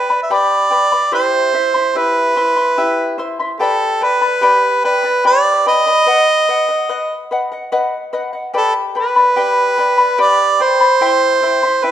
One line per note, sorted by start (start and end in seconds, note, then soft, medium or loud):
0.00 0.20 B4 loud
0.10 0.30 B4 soft
0.10 0.30 D5 soft
0.10 0.30 B5 medium
0.23 0.34 E5 medium
0.30 0.71 G4 medium
0.30 0.70 B4 medium
0.30 0.70 D5 medium
0.30 1.13 D5 loud
0.30 0.69 G5 medium
0.30 0.71 B5 medium
0.70 0.91 B4 medium
0.70 0.91 D5 medium
0.70 0.91 G5 medium
0.70 0.90 B5 medium
0.91 1.12 B4 soft
0.91 1.12 D5 medium
0.91 1.12 B5 soft
1.12 1.53 E4 medium
1.12 1.53 G4 medium
1.12 1.52 C5 medium
1.12 1.99 C5 loud
1.12 1.53 E5 medium
1.12 1.54 C6 medium
1.54 1.74 E4 medium
1.54 1.74 C5 medium
1.54 1.74 E5 medium
1.54 1.73 C6 medium
1.74 1.95 E4 soft
1.74 1.95 E5 medium
1.74 1.95 C6 medium
1.95 2.35 E4 medium
1.95 2.36 G4 medium
1.95 3.20 B4 medium
1.95 2.35 E5 medium
2.36 2.56 E4 medium
2.36 2.56 C5 medium
2.36 2.56 E5 medium
2.36 2.55 C6 medium
2.57 2.77 E4 soft
2.57 2.77 E5 soft
2.57 2.77 C6 soft
2.77 3.18 E4 medium
2.77 3.18 G4 medium
2.77 3.18 E5 medium
3.18 3.39 E4 medium
3.18 3.39 C5 medium
3.18 3.39 E5 medium
3.18 3.38 C6 medium
3.40 3.60 E4 soft
3.40 3.60 E5 medium
3.40 3.60 C6 soft
3.59 4.01 G4 medium
3.59 4.05 A4 medium
3.59 4.00 B4 medium
3.59 4.01 D5 medium
3.59 4.00 G5 medium
3.59 4.02 B5 medium
4.01 4.22 B4 medium
4.01 4.84 B4 medium
4.01 4.21 D5 medium
4.01 4.21 G5 medium
4.01 4.20 B5 medium
4.21 4.41 B4 medium
4.21 4.41 D5 soft
4.21 4.41 B5 medium
4.41 4.83 G4 medium
4.41 4.83 B4 medium
4.41 4.83 D5 medium
4.41 4.83 G5 medium
4.41 4.84 B5 medium
4.84 5.04 B4 medium
4.84 5.22 B4 medium
4.84 5.03 D5 medium
4.84 5.04 G5 medium
4.84 5.02 B5 medium
5.03 5.24 B4 soft
5.03 5.24 D5 soft
5.03 5.24 B5 soft
5.24 5.66 G4 medium
5.24 5.65 B4 medium
5.24 5.65 D5 medium
5.24 5.64 D5 loud
5.24 5.64 G5 medium
5.24 5.66 B5 medium
5.65 5.86 B4 medium
5.65 5.86 D5 medium
5.65 7.28 D#5 loud
5.65 5.86 G5 medium
5.65 5.85 B5 medium
5.86 6.05 B4 soft
5.86 6.07 D5 medium
5.86 6.07 B5 medium
6.06 6.47 B4 medium
6.06 6.48 D#5 medium
6.06 6.49 F#5 medium
6.48 6.69 B4 medium
6.48 6.69 D#5 medium
6.48 6.67 F#5 medium
6.69 6.88 D#5 medium
6.69 6.89 F#5 medium
6.89 7.30 B4 medium
6.89 7.31 D#5 medium
6.89 7.31 F#5 medium
7.31 7.52 B4 medium
7.31 7.52 D#5 medium
7.31 7.51 F#5 medium
7.52 7.71 D#5 medium
7.52 7.71 F#5 medium
7.72 8.12 B4 medium
7.72 8.12 D#5 medium
7.72 8.13 F#5 medium
8.13 8.34 B4 medium
8.13 8.33 D#5 medium
8.13 8.32 F#5 medium
8.33 8.53 D#5 soft
8.33 8.54 F#5 medium
8.54 8.95 G4 medium
8.54 8.73 A4 medium
8.54 8.94 B4 medium
8.54 8.95 D5 medium
8.54 8.94 G5 medium
8.54 8.95 B5 medium
8.95 9.16 B4 medium
8.95 10.17 B4 medium
8.95 9.15 D5 medium
8.95 9.16 G5 medium
8.95 9.14 B5 medium
9.16 9.36 B4 soft
9.16 9.36 D5 soft
9.16 9.36 B5 medium
9.36 9.78 G4 medium
9.36 9.76 B4 medium
9.36 9.77 D5 medium
9.36 9.76 G5 medium
9.36 9.78 B5 medium
9.77 9.98 B4 medium
9.77 9.97 D5 medium
9.77 9.99 G5 medium
9.77 9.96 B5 medium
9.98 10.17 B4 soft
9.98 10.17 D5 soft
9.98 10.18 B5 medium
10.18 10.60 G4 medium
10.18 10.59 B4 medium
10.18 10.59 D5 medium
10.18 10.64 D5 loud
10.18 10.58 G5 medium
10.18 10.59 B5 medium
10.59 10.81 B4 medium
10.59 11.86 C5 loud
10.59 10.80 D5 medium
10.59 10.81 G5 medium
10.59 10.79 B5 medium
10.80 11.01 B4 soft
10.80 11.01 D5 soft
10.80 11.02 B5 medium
11.01 11.41 E4 medium
11.01 11.43 C5 medium
11.01 11.42 E5 medium
11.01 11.41 G5 medium
11.01 11.42 C6 medium
11.42 11.63 E4 medium
11.42 11.62 E5 medium
11.42 11.63 G5 medium
11.42 11.62 C6 medium
11.63 11.83 E4 soft
11.63 11.83 E5 medium
11.63 11.84 C6 medium
11.84 11.91 E4 medium
11.84 11.91 B4 medium
11.84 11.91 E5 medium
11.84 11.91 G5 medium